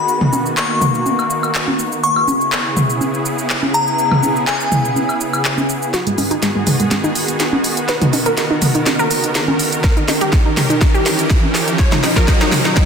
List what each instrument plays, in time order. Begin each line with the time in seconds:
Already playing: supersaw synth D#3 B3 F#4, synth bell B5
0.08 supersaw synth A#3, shaker
0.21 mid tom
0.33 high conga, shaker
0.46 shaker
0.57 synth bell C#6, clap, shaker
0.81 mid tom, shaker
0.95 shaker
1.06 high conga, shaker
1.19 high woodblock, shaker
1.30 shaker
1.43 high woodblock, shaker
1.55 clap, shaker
1.68 high conga
1.79 shaker
1.92 shaker
2.03 supersaw synth C#3 B3 E4 G#4, synth bell C#6, shaker
2.16 high woodblock
2.28 high conga, shaker
2.41 shaker
2.52 clap, shaker
2.77 mid tom, shaker
2.90 shaker
3.01 high conga, shaker
3.14 shaker
3.26 shaker
3.39 shaker
3.50 clap, shaker
3.63 high conga
3.74 synth bell A#5, shaker
3.87 shaker
3.99 shaker
4.12 mid tom, high woodblock
4.23 high conga, shaker
4.36 shaker
4.47 synth bell G#5, clap, shaker
4.60 shaker
4.72 mid tom, shaker
4.85 shaker
4.96 high conga, shaker
5.09 high woodblock, shaker
5.21 shaker
5.33 high woodblock, shaker
5.45 clap, shaker
5.58 high conga, shaker
5.69 shaker
5.82 shaker
5.94 supersaw synth D#3 B3 F#4 G#4, synth pluck F#4, snare, closed hi-hat, riser, shaker
6.07 synth pluck G#3, closed hi-hat
6.18 synth pluck G#3, open hi-hat, high conga, shaker
6.31 synth pluck D#4, closed hi-hat, shaker
6.42 synth pluck G#3, snare, closed hi-hat, shaker
6.55 synth pluck G#3
6.67 open hi-hat, mid tom, shaker
6.80 synth pluck G#3, closed hi-hat, shaker
6.91 synth pluck G#3, snare, closed hi-hat, high conga, shaker
7.04 synth pluck D#4, shaker
7.15 open hi-hat, shaker
7.28 closed hi-hat, shaker
7.40 snare, closed hi-hat, shaker
7.53 high conga
7.64 open hi-hat, shaker
7.77 closed hi-hat, shaker
7.89 supersaw synth A#4, synth pluck B4, snare, closed hi-hat, shaker
8.02 synth pluck D#4, closed hi-hat, mid tom
8.13 synth pluck D#4, open hi-hat, high conga, shaker
8.26 synth pluck A#4, closed hi-hat, shaker
8.37 synth pluck D#4, snare, closed hi-hat, shaker
8.51 synth pluck D#4
8.62 open hi-hat, mid tom, shaker
8.75 synth pluck D#4, closed hi-hat, shaker
8.86 synth pluck D#4, snare, closed hi-hat, high conga, shaker
8.99 synth pluck A#4, shaker
9.11 open hi-hat, shaker
9.24 closed hi-hat, shaker
9.35 snare, closed hi-hat, shaker
9.48 high conga
9.59 open hi-hat, shaker
9.72 closed hi-hat, shaker
9.84 supersaw synth C#4 G4, synth pluck A#4, kick, snare, closed hi-hat, shaker
9.97 synth pluck D#4, closed hi-hat
10.08 synth pluck D#4, snare, open hi-hat, high conga, shaker
10.21 synth pluck G4, closed hi-hat, shaker
10.33 synth pluck D#4, kick, snare, closed hi-hat, shaker
10.46 synth pluck D#4
10.57 snare, open hi-hat, mid tom, shaker
10.70 synth pluck D#4, closed hi-hat, shaker
10.81 synth pluck D#4, kick, snare, closed hi-hat, high conga, shaker
10.94 synth pluck G4, shaker
11.06 snare, open hi-hat, shaker
11.19 closed hi-hat, shaker
11.30 kick, snare, closed hi-hat, shaker
11.43 high conga
11.55 snare, open hi-hat, shaker
11.68 closed hi-hat, shaker
11.79 synth pluck C#5, kick, snare, closed hi-hat, shaker
11.92 synth pluck D#4, snare, closed hi-hat, mid tom
12.03 synth pluck D#4, snare, open hi-hat, high conga, shaker
12.16 synth pluck A#4, kick, snare, shaker
12.28 synth pluck D#4, kick, snare, closed hi-hat, shaker
12.41 synth pluck D#4, snare, closed hi-hat, shaker
12.52 snare, open hi-hat, mid tom, shaker
12.65 synth pluck D#4, snare, shaker
12.77 synth pluck D#4, kick, snare, closed hi-hat, reverse cymbal, high conga, shaker